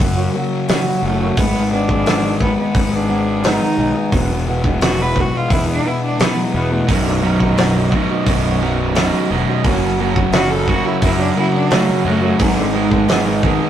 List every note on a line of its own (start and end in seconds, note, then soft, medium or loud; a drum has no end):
0.00 0.27 F#2 medium
0.00 0.33 F#2 loud
0.00 0.33 C#3 loud
0.00 0.19 F#3 medium
0.00 0.34 F#3 loud
0.00 0.18 A#3 medium
0.00 0.16 C#4 medium
0.00 0.15 F#4 medium
0.00 kick loud
0.00 open hi-hat medium
0.16 0.32 F#3 medium
0.16 0.34 A#3 medium
0.16 0.35 C#4 medium
0.16 0.36 F#4 medium
0.34 0.68 F#2 medium
0.34 0.68 C#3 medium
0.34 0.68 F#3 medium
0.34 1.03 A#3 medium
0.34 0.69 C#4 medium
0.34 0.70 F#4 medium
0.68 1.35 F#2 medium
0.68 1.35 C#3 medium
0.68 1.01 F#3 medium
0.68 1.04 C#4 loud
0.68 1.05 F#4 loud
0.68 snare loud
0.68 open hi-hat medium
1.02 1.30 F#1 medium
1.02 1.34 F#2 medium
1.02 1.35 C#3 medium
1.02 1.23 F#3 medium
1.02 1.40 A3 medium
1.02 1.21 C#4 medium
1.02 1.19 F#4 medium
1.20 1.37 F#3 medium
1.20 1.36 A#3 medium
1.20 1.36 C#4 medium
1.20 1.35 F#4 medium
1.36 2.48 G#1 medium
1.36 2.04 G#2 loud
1.36 2.05 D#3 loud
1.36 1.71 G#3 loud
1.36 1.71 B3 loud
1.36 1.72 B3 loud
1.36 1.74 G#4 loud
1.36 kick loud
1.36 open hi-hat medium
1.71 2.05 G#2 medium
1.71 2.06 D#3 medium
1.71 1.92 G#3 medium
1.71 1.90 B3 medium
1.71 2.39 D4 medium
1.71 1.88 G#4 medium
1.88 2.07 G#3 medium
1.88 2.07 B3 medium
1.88 2.09 G#4 medium
1.88 kick medium
2.06 2.57 G#2 medium
2.06 2.58 D#3 medium
2.06 2.26 G#3 loud
2.06 2.25 B3 medium
2.06 2.22 G#4 loud
2.06 snare loud
2.06 open hi-hat medium
2.23 2.39 G#3 medium
2.23 2.40 B3 medium
2.23 2.41 D#4 medium
2.23 2.43 G#4 medium
2.40 2.75 G#2 medium
2.40 2.75 D#3 medium
2.40 2.60 G#3 medium
2.40 2.59 B3 medium
2.40 2.57 B3 medium
2.40 2.93 D#4 medium
2.40 2.56 G#4 medium
2.40 kick medium
2.57 2.94 G#3 medium
2.57 2.96 B3 medium
2.57 2.93 B3 medium
2.57 2.90 G#4 medium
2.75 3.58 G#1 medium
2.75 3.08 G#2 loud
2.75 3.09 D#3 medium
2.75 3.09 G#3 loud
2.75 kick loud
2.75 open hi-hat medium
2.91 3.06 G#3 medium
2.91 3.08 B3 medium
2.91 3.47 D4 medium
2.91 3.10 G#4 medium
3.07 3.42 G#2 medium
3.07 3.42 D#3 medium
3.07 3.43 G#3 medium
3.07 3.44 B3 medium
3.07 3.44 G#4 medium
3.42 4.10 G#2 medium
3.42 4.10 D#3 medium
3.42 3.75 G#3 loud
3.42 3.78 B3 loud
3.42 3.78 D#4 loud
3.42 4.11 D#4 medium
3.42 3.79 G#4 loud
3.42 snare loud
3.42 open hi-hat soft
3.76 3.92 B1 medium
3.76 4.10 G#2 medium
3.76 4.10 D#3 medium
3.76 3.96 G#3 medium
3.76 3.96 B3 medium
3.76 3.94 D#4 medium
3.76 3.93 G#4 medium
3.94 4.12 G#3 medium
3.94 4.13 B3 medium
3.94 4.11 D#4 medium
3.94 4.10 G#4 medium
4.11 5.23 E1 loud
4.11 4.79 E2 medium
4.11 4.80 B2 loud
4.11 4.45 E3 medium
4.11 4.46 G#3 medium
4.11 4.48 B3 loud
4.11 4.48 E4 loud
4.11 kick loud
4.11 open hi-hat medium
4.46 4.80 E2 medium
4.46 4.81 B2 medium
4.46 4.66 E3 medium
4.46 4.64 G#3 medium
4.46 4.64 B3 medium
4.46 4.62 E4 medium
4.63 4.81 E3 medium
4.63 4.81 G#3 medium
4.63 4.83 B3 medium
4.63 4.83 E4 medium
4.63 kick medium
4.80 5.33 E2 medium
4.80 5.33 B2 loud
4.80 5.00 E3 medium
4.80 4.99 G#3 loud
4.80 4.99 B3 loud
4.80 4.97 E4 loud
4.80 5.03 F#4 medium
4.80 snare loud
4.80 open hi-hat medium
4.98 5.13 E3 medium
4.98 5.15 G#3 medium
4.98 5.16 B3 medium
4.98 5.17 E4 medium
4.98 5.22 B4 medium
5.14 5.48 E2 medium
5.14 5.48 B2 medium
5.14 5.33 E3 medium
5.14 5.32 G#3 medium
5.14 5.31 B3 medium
5.14 5.30 E4 medium
5.14 kick medium
5.20 5.39 F#4 medium
5.31 5.68 E3 medium
5.31 5.68 G#3 medium
5.31 5.67 B3 medium
5.31 5.65 E4 medium
5.37 5.54 F4 medium
5.49 5.82 E2 loud
5.49 5.78 E2 medium
5.49 5.83 B2 medium
5.49 5.83 E3 loud
5.49 5.67 E4 medium
5.49 kick loud
5.49 open hi-hat medium
5.66 5.83 E3 medium
5.66 5.84 G#3 medium
5.66 5.85 B3 medium
5.66 5.89 D4 medium
5.66 5.87 E4 medium
5.83 6.17 E2 medium
5.83 6.17 B2 medium
5.83 6.19 E3 medium
5.83 6.20 G#3 medium
5.83 6.20 B3 medium
5.83 6.02 E4 medium
5.88 6.21 E4 medium
6.05 6.22 D4 medium
6.19 6.86 E2 medium
6.19 6.86 B2 medium
6.19 6.52 E3 loud
6.19 6.53 G#3 loud
6.19 6.39 B3 medium
6.19 6.55 B3 medium
6.19 6.56 E4 loud
6.19 snare loud
6.19 open hi-hat medium
6.37 6.56 F#3 medium
6.53 6.86 E2 medium
6.53 6.82 E2 medium
6.53 6.86 B2 medium
6.53 6.73 E3 medium
6.53 6.72 G#3 medium
6.53 6.73 B3 medium
6.53 6.71 B3 medium
6.57 6.69 E4 medium
6.70 6.88 E3 medium
6.70 6.87 G#3 medium
6.70 6.89 A3 medium
6.70 6.87 B3 medium
6.70 6.86 E4 medium
6.87 7.99 B0 medium
6.87 7.21 B1 loud
6.87 7.20 F#2 medium
6.87 6.89 B2 medium
6.87 7.22 B2 medium
6.87 7.04 F#3 medium
6.87 7.24 F#3 loud
6.87 7.24 D#4 loud
6.87 kick loud
6.87 open hi-hat medium
7.06 7.21 D3 medium
7.21 7.55 B1 medium
7.21 7.56 F#2 medium
7.21 7.42 B2 medium
7.21 7.89 F#3 loud
7.21 7.41 F#3 medium
7.21 7.38 D#4 medium
7.39 7.56 B2 medium
7.39 7.58 F#3 medium
7.39 7.58 D#4 medium
7.39 kick medium
7.56 7.90 B1 medium
7.56 7.90 F#2 loud
7.56 7.58 B2 medium
7.56 7.77 B2 medium
7.56 7.76 F#3 medium
7.56 7.73 D#4 loud
7.56 snare loud
7.56 open hi-hat medium
7.74 7.91 B2 medium
7.74 7.93 F#3 medium
7.74 7.93 D#4 medium
7.91 8.26 B1 medium
7.91 8.43 F#2 medium
7.91 8.10 B2 medium
7.91 8.09 F#3 medium
7.91 8.07 D#4 medium
7.91 kick medium
8.08 8.45 B2 medium
8.08 8.43 F#3 medium
8.08 8.41 D#4 medium
8.26 9.10 B0 medium
8.26 8.61 B1 loud
8.26 8.61 F#2 loud
8.26 8.62 B2 loud
8.26 kick loud
8.26 open hi-hat medium
8.43 8.60 B2 medium
8.43 8.61 F#3 medium
8.43 8.62 D#4 medium
8.60 8.94 B1 medium
8.60 8.95 F#2 medium
8.60 8.95 B2 medium
8.60 8.96 F#3 medium
8.60 8.97 D#4 medium
8.95 9.30 B1 loud
8.95 9.28 F#2 medium
8.95 8.97 B2 loud
8.95 9.30 B2 loud
8.95 9.30 F#3 loud
8.95 9.31 D#4 loud
8.95 snare loud
8.95 open hi-hat medium
9.30 9.44 E1 medium
9.30 9.63 B1 medium
9.30 9.62 F#2 medium
9.30 9.49 B2 medium
9.30 9.47 F#3 medium
9.30 9.45 D#4 medium
9.47 9.64 B2 medium
9.47 9.63 F#3 medium
9.47 9.62 D#4 medium
9.63 10.75 F#1 loud
9.63 10.31 F#2 medium
9.63 10.32 C#3 loud
9.63 9.97 F#3 loud
9.63 9.98 A#3 loud
9.63 10.00 C#4 loud
9.63 10.01 F#4 loud
9.63 kick loud
9.63 open hi-hat medium
9.98 10.31 F#2 medium
9.98 10.32 C#3 medium
9.98 10.18 F#3 medium
9.98 10.16 A#3 medium
9.98 10.16 C#4 medium
9.98 10.14 F#4 medium
10.15 10.33 F#3 medium
10.15 10.33 A#3 medium
10.15 10.34 C#4 medium
10.15 10.35 F#4 medium
10.15 kick medium
10.32 10.84 F#2 loud
10.32 10.85 C#3 medium
10.32 10.52 F#3 loud
10.32 10.51 A#3 loud
10.32 10.49 C#4 loud
10.32 10.52 F#4 medium
10.32 10.49 F#4 loud
10.32 snare loud
10.32 open hi-hat medium
10.50 10.66 F#3 medium
10.50 10.67 A#3 medium
10.50 10.68 C#4 medium
10.50 10.70 F#4 medium
10.50 10.69 A4 medium
10.67 11.00 F#2 medium
10.67 11.01 C#3 medium
10.67 10.86 F#3 medium
10.67 10.85 A#3 medium
10.67 10.84 C#4 medium
10.67 10.87 F#4 medium
10.67 10.83 F#4 medium
10.67 kick medium
10.84 11.20 F#3 medium
10.84 11.19 A#3 medium
10.84 11.18 C#4 medium
10.84 11.01 E4 medium
10.84 11.17 F#4 medium
11.01 11.35 F#2 loud
11.01 11.30 F#2 loud
11.01 11.36 C#3 loud
11.01 11.37 F#3 loud
11.01 11.19 E4 medium
11.01 kick loud
11.01 open hi-hat medium
11.18 11.34 F#3 medium
11.18 11.35 A#3 medium
11.18 11.36 C#4 medium
11.18 11.35 D4 medium
11.18 11.38 F#4 medium
11.36 11.69 F#2 medium
11.36 11.69 C#3 medium
11.36 11.70 F#3 medium
11.36 11.71 A#3 medium
11.36 11.72 C#4 medium
11.36 11.53 E4 medium
11.36 11.72 F#4 medium
11.55 11.73 D4 medium
11.70 12.37 F#2 medium
11.70 12.38 C#3 loud
11.70 12.03 F#3 loud
11.70 11.91 A3 medium
11.70 12.05 A#3 loud
11.70 12.06 C#4 loud
11.70 12.07 F#4 loud
11.70 snare loud
11.70 open hi-hat medium
11.89 12.05 F#3 medium
12.04 12.33 F#2 loud
12.04 12.37 F#2 medium
12.04 12.38 C#3 medium
12.04 12.23 F#3 medium
12.04 12.22 A3 medium
12.04 12.22 A#3 medium
12.04 12.21 C#4 medium
12.04 12.19 F#4 medium
12.21 12.38 F#3 medium
12.21 12.39 A3 medium
12.21 12.38 A#3 medium
12.21 12.37 C#4 medium
12.21 12.37 F#4 medium
12.38 13.50 G#1 loud
12.38 13.06 G#2 medium
12.38 13.06 D#3 loud
12.38 12.56 F#3 medium
12.38 12.72 G#3 medium
12.38 12.74 B3 medium
12.38 12.74 D#4 medium
12.38 12.76 G#4 loud
12.38 kick loud
12.38 open hi-hat medium
12.58 12.73 D3 medium
12.73 13.08 G#2 medium
12.73 13.08 D#3 medium
12.73 12.93 G#3 medium
12.73 13.42 G#3 loud
12.73 12.92 B3 medium
12.73 12.90 D#4 medium
12.73 12.89 G#4 medium
12.90 13.08 G#3 medium
12.90 13.09 B3 medium
12.90 13.08 D#4 medium
12.90 13.10 G#4 medium
12.90 kick medium
13.07 13.59 G#2 medium
13.07 13.60 D#3 loud
13.07 13.27 G#3 medium
13.07 13.27 B3 loud
13.07 13.25 D#4 loud
13.07 13.24 G#4 loud
13.07 snare loud
13.07 open hi-hat medium
13.24 13.42 G#3 medium
13.24 13.43 B3 medium
13.24 13.43 D#4 medium
13.24 13.45 G#4 medium
13.42 13.70 G#2 medium
13.42 13.70 D#3 medium
13.42 13.62 G#3 medium
13.42 13.61 B3 medium
13.42 13.60 D#4 medium
13.42 13.58 G#4 medium
13.42 kick medium
13.59 13.70 G#3 medium
13.59 13.70 B3 medium
13.59 13.70 D#4 medium
13.59 13.70 G#4 medium